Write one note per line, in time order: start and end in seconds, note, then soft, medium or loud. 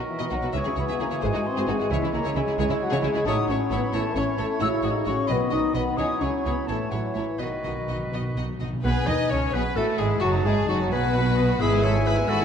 0.00 0.53 D#3 soft
0.00 0.51 F#4 medium
0.00 0.55 A#4 soft
0.08 0.31 E3 medium
0.08 0.34 E5 medium
0.19 0.24 B2 medium
0.19 0.25 F#4 medium
0.19 0.24 B4 medium
0.19 0.24 D#5 medium
0.31 0.37 B1 soft
0.31 0.35 B2 soft
0.31 0.55 F#3 medium
0.31 0.36 D#4 soft
0.31 0.35 F#4 soft
0.31 0.36 F#4 soft
0.31 0.55 F#5 medium
0.42 0.47 B2 soft
0.42 0.48 F#4 soft
0.42 0.47 B4 soft
0.53 0.59 C#2 medium
0.53 0.58 C#3 medium
0.53 1.88 E3 medium
0.53 0.65 C#4 medium
0.53 0.60 E4 medium
0.53 1.92 F#4 medium
0.53 0.59 G#4 medium
0.53 0.58 E5 medium
0.53 0.78 C#6 medium
0.57 1.89 G#4 medium
0.64 0.70 C#3 soft
0.64 0.70 C#4 soft
0.64 0.71 E4 soft
0.64 0.69 G#4 soft
0.76 0.82 C#2 soft
0.76 0.82 C#3 soft
0.76 0.99 B3 medium
0.76 0.82 E4 soft
0.76 0.83 E4 soft
0.76 0.81 C#5 soft
0.76 0.85 B5 medium
0.88 0.93 C#3 medium
0.88 0.93 E4 medium
0.88 0.94 G#4 medium
0.88 0.93 E5 medium
1.00 1.05 C#2 soft
1.00 1.04 C#3 soft
1.00 1.23 A#3 medium
1.00 1.05 C#4 medium
1.00 1.04 E4 soft
1.00 1.05 G#4 soft
1.00 1.07 A#5 medium
1.11 1.16 C#3 medium
1.11 1.15 E4 soft
1.11 1.16 E4 soft
1.11 1.15 C#5 soft
1.21 1.28 G#1 medium
1.21 1.28 G#2 medium
1.21 1.46 G#3 medium
1.21 1.27 F#4 medium
1.21 1.26 G#4 medium
1.21 1.26 C5 medium
1.21 1.48 G#5 medium
1.33 1.39 G#2 medium
1.33 1.38 D#4 medium
1.33 1.39 F#4 soft
1.33 1.39 F#4 medium
1.46 1.69 C4 medium
1.46 1.70 C6 medium
1.56 1.62 G#2 medium
1.56 1.62 F#4 medium
1.56 1.61 G#4 medium
1.56 1.62 C5 medium
1.67 1.73 G#1 soft
1.67 1.73 G#2 soft
1.67 1.91 G#3 medium
1.67 1.72 D#4 soft
1.67 1.73 F#4 soft
1.67 1.74 F#4 soft
1.67 1.92 G#5 medium
1.79 1.84 G#2 soft
1.79 1.83 F#4 medium
1.79 1.84 F#4 medium
1.79 1.86 G#4 medium
1.90 1.96 C#2 medium
1.90 1.95 C#3 medium
1.90 2.14 E3 medium
1.90 3.25 G#3 medium
1.90 1.95 E4 medium
1.90 2.58 E4 medium
1.90 1.94 G#4 medium
1.90 2.57 C#5 medium
1.90 1.96 C#5 medium
1.90 2.13 E5 medium
2.01 2.06 C#3 medium
2.01 2.06 C#4 soft
2.01 2.07 E4 soft
2.01 2.09 E4 soft
2.12 2.18 C#2 soft
2.12 2.18 C#3 soft
2.12 2.22 A#3 medium
2.12 2.17 E4 soft
2.12 2.18 E4 soft
2.12 2.19 G#4 soft
2.12 2.39 A#5 medium
2.24 2.29 C#3 medium
2.24 2.29 E4 medium
2.24 2.29 G#4 medium
2.24 2.30 C#5 medium
2.34 2.40 C#2 medium
2.34 2.40 C#3 soft
2.34 2.57 G#3 medium
2.34 2.39 C#4 soft
2.34 2.41 E4 soft
2.34 2.41 E4 medium
2.34 2.59 G#5 medium
2.47 2.51 C#3 medium
2.47 2.52 E4 soft
2.47 2.53 G#4 medium
2.58 2.63 C#2 medium
2.58 2.63 C#3 medium
2.58 2.69 G#3 medium
2.58 2.63 E4 medium
2.58 3.25 E4 medium
2.58 2.62 G#4 medium
2.58 2.63 C#5 medium
2.58 3.25 C#5 medium
2.58 2.66 G#5 medium
2.69 2.73 C#3 medium
2.69 2.73 C#4 medium
2.69 2.75 E4 medium
2.81 2.92 F#3 medium
2.81 3.03 F#5 medium
2.90 2.96 C#3 medium
2.90 2.98 E4 medium
2.90 2.95 G#4 medium
2.90 2.97 C#5 medium
3.02 3.08 C#2 medium
3.02 3.07 C#3 medium
3.02 3.26 G#3 medium
3.02 3.07 C#4 medium
3.02 3.08 E4 medium
3.02 3.09 E4 medium
3.02 3.10 G#5 medium
3.13 3.18 C#3 soft
3.13 3.18 E4 medium
3.13 3.21 E4 medium
3.13 3.20 G#4 medium
3.25 3.33 A1 medium
3.25 3.33 A2 medium
3.25 3.96 F#3 medium
3.25 3.49 D#4 loud
3.25 4.63 E4 medium
3.25 3.35 E4 medium
3.25 3.33 A4 medium
3.25 5.30 C#5 medium
3.25 3.36 C#5 medium
3.25 3.49 D#6 medium
3.47 3.56 A1 medium
3.47 3.55 A2 medium
3.47 3.71 C#4 medium
3.47 3.57 E4 soft
3.47 3.55 A4 medium
3.47 3.58 C#5 soft
3.47 3.73 C#6 medium
3.70 3.79 A1 medium
3.70 3.78 A2 medium
3.70 3.82 B3 medium
3.70 3.80 E4 medium
3.70 3.79 A4 medium
3.70 3.80 C#5 medium
3.70 3.96 B5 medium
3.92 4.01 A1 medium
3.92 4.00 A2 medium
3.92 4.39 E3 medium
3.92 4.17 A3 medium
3.92 4.02 E4 medium
3.92 4.01 A4 medium
3.92 4.02 C#5 medium
3.92 4.17 A5 medium
4.14 4.23 A1 medium
4.14 4.22 A2 medium
4.14 4.38 C#4 medium
4.14 4.24 E4 medium
4.14 4.24 A4 medium
4.14 4.25 C#5 medium
4.14 4.23 C#6 medium
4.37 4.46 A1 medium
4.37 4.46 A2 medium
4.37 4.60 A3 medium
4.37 4.47 E4 medium
4.37 4.46 A4 medium
4.37 4.46 C#5 medium
4.37 4.46 A5 medium
4.60 4.69 A1 medium
4.60 4.69 A2 medium
4.60 5.26 C#3 medium
4.60 4.84 E4 loud
4.60 4.68 F#4 medium
4.60 4.69 F#4 medium
4.60 5.81 F#4 medium
4.60 4.68 C#5 medium
4.60 4.68 E6 medium
4.83 4.91 A1 medium
4.83 4.91 A2 medium
4.83 5.07 D#4 medium
4.83 4.91 F#4 medium
4.83 4.92 F#4 soft
4.83 4.91 C#5 medium
4.83 4.90 D#6 medium
5.05 5.14 A1 medium
5.05 5.13 A2 medium
5.05 5.30 C#4 medium
5.05 5.14 F#4 medium
5.05 5.14 F#4 soft
5.05 5.14 C#5 soft
5.05 5.29 C#6 medium
5.27 5.37 B1 medium
5.27 5.37 B2 medium
5.27 6.00 D#3 medium
5.27 5.52 B3 medium
5.27 5.37 F#4 medium
5.27 5.37 B4 medium
5.27 5.36 D#5 medium
5.27 5.83 D#5 soft
5.27 5.54 B5 medium
5.50 5.61 B1 medium
5.50 5.59 B2 medium
5.50 5.75 D#4 medium
5.50 5.58 F#4 medium
5.50 5.59 B4 medium
5.50 5.59 D#5 medium
5.50 5.75 D#6 medium
5.73 5.84 B1 medium
5.73 5.81 B2 medium
5.73 5.98 B3 medium
5.73 5.82 F#4 soft
5.73 5.84 B4 soft
5.73 5.83 D#5 soft
5.73 5.99 B5 medium
5.96 6.07 C#2 medium
5.96 6.06 C#3 medium
5.96 6.70 F#3 medium
5.96 6.20 D#4 medium
5.96 6.05 E4 medium
5.96 6.65 E4 medium
5.96 6.07 G#4 medium
5.96 6.06 C#5 medium
5.96 6.66 C#5 medium
5.96 6.24 D#6 medium
6.20 6.30 C#2 soft
6.20 6.29 C#3 soft
6.20 6.45 C#4 medium
6.20 6.30 E4 soft
6.20 6.30 G#4 soft
6.20 6.30 C#5 soft
6.20 6.45 C#6 medium
6.44 6.54 C#2 medium
6.44 6.53 C#3 medium
6.44 6.55 B3 medium
6.44 6.53 E4 soft
6.44 6.54 G#4 soft
6.44 6.54 C#5 soft
6.44 6.69 B5 medium
6.67 6.77 A1 medium
6.67 6.76 A2 soft
6.67 7.40 E3 soft
6.67 6.91 A3 medium
6.67 6.76 E4 soft
6.67 7.42 E4 soft
6.67 6.77 A4 soft
6.67 7.40 C#5 soft
6.67 6.77 C#5 soft
6.67 6.92 A5 medium
6.91 6.99 A1 soft
6.91 6.99 A2 soft
6.91 7.16 F#3 medium
6.91 7.00 E4 soft
6.91 7.00 A4 soft
6.91 7.00 C#5 soft
6.91 7.16 F#5 medium
7.14 7.24 A1 soft
7.14 7.22 A2 soft
7.14 7.41 E3 soft
7.14 7.25 E4 soft
7.14 7.24 A4 soft
7.14 7.24 C#5 soft
7.14 7.38 E5 soft
7.38 7.48 B1 soft
7.38 7.46 B2 soft
7.38 7.48 B2 soft
7.38 8.47 D#3 soft
7.38 7.48 D#4 soft
7.38 7.48 F#4 soft
7.38 8.61 F#4 soft
7.38 8.60 B4 soft
7.38 8.11 D#5 medium
7.38 7.47 D#5 soft
7.43 8.14 D#3 medium
7.49 7.56 B2 soft
7.57 7.63 B2 soft
7.63 7.73 B1 soft
7.63 7.71 B2 soft
7.63 7.73 D#4 soft
7.63 7.73 F#4 soft
7.63 7.72 D#5 soft
7.72 7.79 B2 soft
7.80 7.88 B2 soft
7.88 7.96 B1 soft
7.88 7.96 B2 soft
7.88 7.95 B2 soft
7.88 7.98 D#4 soft
7.88 7.97 F#4 soft
7.88 7.97 D#5 soft
7.96 8.03 B2 soft
8.05 8.12 B2 soft
8.12 8.21 B1 soft
8.12 8.20 B2 soft
8.12 8.19 B2 soft
8.12 8.22 D#4 soft
8.12 8.22 F#4 soft
8.12 8.22 D#5 soft
8.20 8.26 B2 soft
8.28 8.34 B2 medium
8.35 8.44 B1 soft
8.35 8.42 B2 medium
8.35 8.44 B2 soft
8.35 8.45 D#4 soft
8.35 8.45 F#4 soft
8.35 8.45 D#5 soft
8.43 8.49 B2 medium
8.50 8.58 B2 medium
8.59 8.68 B1 soft
8.59 8.65 B2 medium
8.59 8.68 B2 soft
8.59 8.69 D#4 soft
8.59 8.70 F#4 soft
8.59 8.68 D#5 soft
8.66 8.72 B2 medium
8.73 8.81 B2 medium
8.83 8.93 B1 medium
8.83 8.91 B2 medium
8.83 8.94 B3 medium
8.83 8.93 B3 medium
8.83 9.07 B3 medium
8.83 9.06 G#4 medium
8.83 9.08 B4 medium
8.83 9.06 B4 medium
8.83 8.90 B4 medium
8.83 9.50 G#5 medium
9.07 9.16 D#2 medium
9.07 9.15 D#3 medium
9.07 9.30 D#4 medium
9.07 9.31 D#4 medium
9.07 9.16 D#4 medium
9.07 9.31 B4 medium
9.07 9.32 D#5 medium
9.07 9.31 D#5 medium
9.07 9.33 D#5 medium
9.30 9.54 C#2 medium
9.30 9.53 C#3 soft
9.30 9.54 C#4 medium
9.30 9.55 C#4 medium
9.30 9.54 A4 medium
9.30 9.54 C#5 medium
9.30 9.56 C#5 medium
9.53 9.61 B1 medium
9.53 9.61 B2 medium
9.53 9.61 B3 medium
9.53 9.77 B3 medium
9.53 9.61 G#4 medium
9.53 9.76 B4 medium
9.53 9.78 B4 medium
9.53 9.77 B4 medium
9.53 10.21 B5 medium
9.75 9.84 A1 medium
9.75 9.83 A2 medium
9.75 9.99 A3 medium
9.75 10.00 A3 medium
9.75 9.99 F#4 medium
9.75 10.00 A4 medium
9.75 9.84 A4 medium
9.75 10.00 A4 medium
9.98 10.21 G#1 medium
9.98 10.21 G#2 medium
9.98 10.22 G#3 medium
9.98 10.24 G#3 medium
9.98 10.23 E4 medium
9.98 10.06 G#4 medium
9.98 10.19 G#4 medium
9.98 10.23 G#4 medium
10.20 10.45 F#1 medium
10.20 10.44 F#2 medium
10.20 10.44 F#3 medium
10.20 10.45 F#3 medium
10.20 10.49 F#3 medium
10.20 10.46 D#4 medium
10.20 10.31 F#4 medium
10.20 10.29 F#4 medium
10.20 10.47 F#4 medium
10.20 10.93 A5 medium
10.43 10.69 G#1 medium
10.43 10.68 G#2 medium
10.43 10.68 G#3 medium
10.43 10.52 G#3 medium
10.43 10.53 E4 medium
10.43 10.68 G#4 medium
10.43 10.69 G#4 medium
10.43 10.68 G#4 medium
10.47 10.69 G#3 medium
10.67 10.92 F#1 medium
10.67 10.91 F#2 medium
10.67 10.92 F#3 medium
10.67 10.92 D#4 medium
10.67 10.79 F#4 medium
10.67 10.74 F#4 medium
10.67 10.77 F#4 medium
10.91 11.61 B1 medium
10.91 11.61 B2 medium
10.91 11.61 B3 medium
10.91 11.60 B3 medium
10.91 11.62 B3 medium
10.91 11.60 F#4 medium
10.91 11.60 B4 medium
10.91 11.16 G#5 medium
11.15 11.36 F#5 medium
11.37 11.47 D#5 medium
11.60 12.21 G#1 medium
11.60 12.21 G#2 medium
11.60 11.72 G#3 medium
11.60 12.45 G#3 medium
11.60 11.84 E4 medium
11.60 11.72 E4 medium
11.60 12.45 E4 medium
11.60 11.84 G#4 loud
11.60 12.45 E5 medium
11.60 12.45 G#5 medium
11.60 11.72 B5 medium
11.71 11.84 B3 medium
11.71 11.84 G#4 medium
11.71 11.84 G#5 medium
11.83 11.95 G#3 medium
11.83 11.95 E4 medium
11.83 11.93 A4 medium
11.83 12.08 C#5 medium
11.83 11.95 B5 medium
11.94 12.06 B3 medium
11.94 12.06 G#4 medium
11.94 12.07 G#5 medium
12.05 12.17 G#3 medium
12.05 12.17 E4 medium
12.05 12.14 G#4 medium
12.05 12.30 B4 medium
12.05 12.17 B5 medium
12.17 12.29 B3 medium
12.17 12.29 G#4 medium
12.17 12.29 G#5 medium
12.29 12.45 G#1 medium
12.29 12.45 G#2 medium
12.29 12.41 G#3 medium
12.29 12.41 E4 medium
12.29 12.45 F#4 loud
12.29 12.45 A4 medium
12.29 12.40 B5 medium
12.40 12.45 B3 medium
12.40 12.45 G#4 medium
12.40 12.45 G#5 medium